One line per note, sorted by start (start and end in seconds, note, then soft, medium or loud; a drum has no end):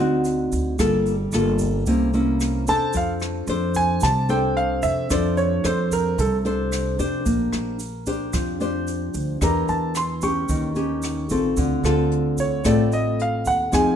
0.00 0.48 D2 medium
0.00 0.77 D3 medium
0.00 0.75 C4 medium
0.00 0.75 D#4 medium
0.00 0.75 F#4 medium
0.25 closed hi-hat soft
0.25 shaker medium
0.52 0.77 D2 medium
0.52 kick soft
0.52 closed hi-hat soft
0.52 shaker medium
0.79 1.29 G1 medium
0.79 1.84 G3 medium
0.79 1.14 A#3 medium
0.79 1.14 F4 medium
0.79 1.14 A4 medium
0.79 kick medium
0.79 cross-stick medium
0.79 closed hi-hat soft
0.79 shaker medium
1.06 closed hi-hat soft
1.06 shaker soft
1.32 1.83 G1 medium
1.32 1.85 A#3 medium
1.32 1.85 F4 medium
1.32 1.85 A4 medium
1.32 cross-stick medium
1.32 closed hi-hat soft
1.32 shaker soft
1.59 kick soft
1.59 closed hi-hat soft
1.59 shaker medium
1.86 2.64 C2 medium
1.86 2.92 C3 medium
1.86 2.10 A#3 medium
1.86 2.10 C#4 soft
1.86 2.10 E4 medium
1.86 kick medium
1.86 closed hi-hat soft
1.86 shaker medium
2.14 2.63 A#3 medium
2.14 2.64 C#4 medium
2.14 2.64 E4 medium
2.14 closed hi-hat soft
2.14 shaker soft
2.40 cross-stick medium
2.40 closed hi-hat soft
2.40 shaker medium
2.67 2.93 E2 medium
2.67 3.44 D4 medium
2.67 3.44 A4 medium
2.67 3.45 C5 medium
2.67 2.95 A5 loud
2.67 kick soft
2.67 closed hi-hat soft
2.67 shaker medium
2.93 3.45 F2 medium
2.93 3.99 F3 medium
2.93 3.12 F5 medium
2.93 kick medium
2.93 closed hi-hat soft
2.93 shaker medium
3.20 cross-stick medium
3.20 closed hi-hat soft
3.20 shaker soft
3.47 3.98 F2 loud
3.47 4.02 D4 medium
3.47 4.02 A4 medium
3.47 4.03 C5 medium
3.47 closed hi-hat soft
3.47 shaker soft
3.74 4.02 G#5 medium
3.74 kick soft
3.74 closed hi-hat soft
3.74 shaker medium
4.00 4.80 C2 medium
4.00 5.07 C3 medium
4.00 4.29 A5 medium
4.00 kick medium
4.00 cross-stick medium
4.00 closed hi-hat soft
4.00 shaker medium
4.29 5.06 D4 medium
4.29 5.06 A4 medium
4.29 5.06 C5 medium
4.29 4.56 G5 medium
4.29 closed hi-hat soft
4.29 shaker soft
4.57 4.83 F5 medium
4.57 closed hi-hat soft
4.82 5.09 F2 medium
4.82 5.09 E5 loud
4.82 kick soft
4.82 closed hi-hat soft
4.82 shaker medium
5.10 5.61 F2 loud
5.10 6.15 F3 medium
5.10 5.60 D4 medium
5.10 5.60 A4 medium
5.10 5.60 C5 medium
5.10 5.38 D5 medium
5.10 kick medium
5.10 cross-stick medium
5.10 closed hi-hat soft
5.10 shaker medium
5.37 5.63 C#5 medium
5.37 closed hi-hat soft
5.37 shaker soft
5.64 6.14 F2 loud
5.64 6.18 D4 medium
5.64 6.18 A4 medium
5.64 6.18 C5 medium
5.64 5.91 C5 medium
5.64 cross-stick medium
5.64 closed hi-hat soft
5.64 shaker soft
5.91 6.18 A#4 medium
5.91 kick soft
5.91 closed hi-hat soft
5.91 shaker medium
6.18 6.95 C2 loud
6.18 7.23 C3 medium
6.18 6.36 A4 medium
6.18 kick medium
6.18 closed hi-hat soft
6.18 shaker medium
6.45 6.94 D4 medium
6.45 6.95 A4 medium
6.45 6.95 C5 medium
6.45 closed hi-hat soft
6.45 shaker soft
6.72 cross-stick medium
6.72 closed hi-hat soft
6.72 shaker medium
6.99 7.24 F2 medium
6.99 7.76 D4 medium
6.99 7.76 G4 medium
6.99 7.76 C5 medium
6.99 kick soft
6.99 closed hi-hat soft
6.99 shaker medium
7.25 7.51 A#1 medium
7.25 8.31 A#3 medium
7.25 kick medium
7.25 closed hi-hat soft
7.25 shaker medium
7.53 8.30 A#1 medium
7.53 cross-stick medium
7.53 closed hi-hat soft
7.53 shaker soft
7.79 closed hi-hat soft
7.79 shaker medium
8.06 8.56 D4 medium
8.06 8.57 G4 medium
8.06 8.57 C5 medium
8.06 kick soft
8.06 closed hi-hat soft
8.06 shaker medium
8.33 9.11 F2 loud
8.33 9.38 F3 medium
8.33 kick medium
8.33 cross-stick medium
8.33 closed hi-hat soft
8.33 shaker medium
8.61 9.37 D4 medium
8.61 9.37 G4 medium
8.61 9.37 C5 medium
8.61 closed hi-hat soft
8.61 shaker soft
8.87 closed hi-hat soft
8.87 shaker soft
9.14 9.39 D2 medium
9.14 kick soft
9.14 closed hi-hat soft
9.14 shaker medium
9.41 9.67 E2 medium
9.41 10.47 E3 medium
9.41 9.95 D4 medium
9.41 9.95 G4 medium
9.41 9.95 A#4 medium
9.41 9.69 A#5 medium
9.41 kick medium
9.41 cross-stick medium
9.41 closed hi-hat soft
9.41 shaker medium
9.68 10.45 E2 medium
9.68 9.95 A5 medium
9.68 closed hi-hat soft
9.68 shaker soft
9.95 10.22 C6 medium
9.95 cross-stick medium
9.95 closed hi-hat soft
9.95 shaker medium
10.22 10.72 C#4 medium
10.22 10.72 G4 medium
10.22 11.53 C#6 medium
10.22 kick soft
10.22 closed hi-hat soft
10.22 shaker medium
10.49 11.26 D#2 medium
10.49 11.54 D#3 medium
10.49 kick medium
10.49 closed hi-hat soft
10.49 shaker medium
10.75 11.26 C#4 medium
10.75 11.26 G4 medium
10.75 closed hi-hat soft
10.75 shaker soft
11.02 cross-stick medium
11.02 closed hi-hat soft
11.02 shaker medium
11.29 11.55 A1 medium
11.29 11.83 C4 medium
11.29 11.83 F4 medium
11.29 11.84 A4 medium
11.29 kick soft
11.29 closed hi-hat soft
11.29 shaker medium
11.57 11.82 D2 medium
11.57 12.63 D3 medium
11.57 kick medium
11.57 closed hi-hat soft
11.57 shaker medium
11.83 12.61 D2 medium
11.83 12.61 C4 medium
11.83 12.61 F4 medium
11.83 12.61 A4 medium
11.83 cross-stick medium
11.83 closed hi-hat soft
11.83 shaker soft
12.11 closed hi-hat soft
12.38 12.65 C#5 medium
12.38 kick soft
12.38 closed hi-hat soft
12.38 shaker medium
12.64 13.42 A1 medium
12.64 13.70 A2 medium
12.64 13.68 C4 medium
12.64 13.68 F4 medium
12.64 13.69 A4 medium
12.64 12.92 D5 medium
12.64 kick medium
12.64 cross-stick medium
12.64 closed hi-hat soft
12.64 shaker medium
12.92 13.19 D#5 medium
12.92 closed hi-hat soft
12.92 shaker soft
13.19 13.46 F5 medium
13.19 closed hi-hat soft
13.45 13.71 D#2 medium
13.45 13.73 F#5 medium
13.45 kick soft
13.45 closed hi-hat soft
13.45 shaker medium
13.72 13.96 F2 medium
13.72 13.96 F3 medium
13.72 13.96 C4 medium
13.72 13.96 D#4 medium
13.72 13.96 G#4 medium
13.72 13.96 G#5 medium
13.72 kick medium
13.72 cross-stick medium
13.72 closed hi-hat soft
13.72 shaker medium